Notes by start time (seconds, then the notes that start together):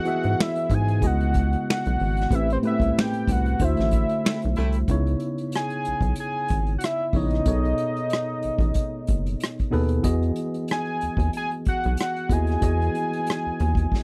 Already playing: E3 B3 F#4 G#4 D#5 F#5
0.05 E3 B3 F#4 G#4 E5, closed hi-hat
0.23 G#2, closed hi-hat
0.40 E5, finger snap, snare
0.55 closed hi-hat
0.70 G#2, kick, closed hi-hat
0.74 G#5
0.88 closed hi-hat
1.01 C#2 C#3 G#3 B3 E4 F#4 D#5, kick, closed hi-hat
1.06 F#5
1.20 closed hi-hat
1.34 kick, closed hi-hat
1.53 closed hi-hat
1.70 F#5, finger snap, snare
1.85 B1, closed hi-hat
2.00 G#1, open hi-hat
2.17 snare, closed hi-hat
2.30 A1 A2 A3 C4 G4 B4, kick, closed hi-hat
2.35 E5
2.50 C5, closed hi-hat
2.63 A2 A3 B3 G4 B4, closed hi-hat
2.67 C4 E5
2.80 C2, kick, closed hi-hat
2.98 G5, finger snap, snare
3.13 closed hi-hat
3.27 C2, kick, closed hi-hat
3.31 F#5
3.46 closed hi-hat
3.59 D2 D3 A3 E4 F#4 C5, kick, closed hi-hat
3.64 E5
3.77 A1, snare, closed hi-hat
3.91 kick, closed hi-hat
4.09 closed hi-hat
4.25 A3 C4 E4, finger snap, snare
4.42 B1, closed hi-hat
4.56 C2 A3 C4 E4, closed hi-hat
4.73 closed hi-hat
4.88 C#2 C#3 B3 D#4 E4 C#5, kick, closed hi-hat
5.07 closed hi-hat
5.20 closed hi-hat
5.38 closed hi-hat
5.52 G#5, cross-stick, closed hi-hat
5.70 closed hi-hat
5.85 B1, closed hi-hat
6.01 B1, kick, closed hi-hat
6.15 closed hi-hat
6.20 G#5
6.48 G#1, kick, closed hi-hat
6.67 closed hi-hat
6.78 F#5, closed hi-hat
6.84 E5, cross-stick
7.11 A#1 C#3 B3 D#4 E5, kick, open hi-hat
7.15 E4 C#5 D#5
7.30 cross-stick, closed hi-hat
7.45 B1 B2 B3 D#4 G#4 A4 C#5, kick, closed hi-hat
7.65 closed hi-hat
7.78 closed hi-hat
7.97 closed hi-hat
8.10 cross-stick, closed hi-hat
8.43 A1, closed hi-hat
8.59 A1, kick, closed hi-hat
8.74 kick, closed hi-hat
9.07 F#1, kick, closed hi-hat
9.26 closed hi-hat
9.40 cross-stick, closed hi-hat
9.59 kick, closed hi-hat
9.71 D#2 B2 B3 D#4 G#4 A4 B4, open hi-hat
9.89 closed hi-hat
10.02 E2 E3 B3 F#4 G#4 D#5, kick, closed hi-hat
10.23 closed hi-hat
10.36 closed hi-hat
10.54 closed hi-hat
10.68 G#5, cross-stick, closed hi-hat
10.86 closed hi-hat
11.01 D#2, closed hi-hat
11.17 D#2, kick, closed hi-hat
11.33 G#5, closed hi-hat
11.51 closed hi-hat
11.65 B1 F#5, kick, closed hi-hat
11.84 B1, closed hi-hat
11.97 F#5, cross-stick, closed hi-hat
12.16 closed hi-hat
12.29 D#2 B3 E4 F#4 G#4 D#5 G#5, kick, closed hi-hat
12.47 cross-stick, closed hi-hat
12.61 E2 E3 B3 F#4 G#4 D#5, kick, closed hi-hat
12.82 closed hi-hat
12.95 closed hi-hat
13.13 closed hi-hat
13.27 cross-stick, closed hi-hat
13.47 D#2
13.60 D#2, closed hi-hat
13.75 kick, closed hi-hat
13.92 kick, snare